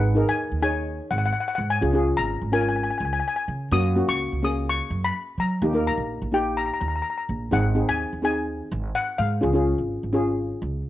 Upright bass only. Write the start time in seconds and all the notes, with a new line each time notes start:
Already playing: G#1
0.27 D#2
0.51 D#2
1.11 G#1
1.58 G#2
1.82 C#2
2.18 G#1
2.42 G#1
3.00 C#2
3.48 C#3
3.71 F#2
4.08 C#2
4.32 C#2
4.90 F#2
5.38 F#3
5.62 D#2
5.98 A#1
6.22 A#1
6.81 D#2
7.29 A#1
7.52 G#1
7.89 D#2
8.13 D#2
8.72 G#1
9.19 G#2
9.43 C#2
9.78 G#1
10.03 G#1
10.62 C#2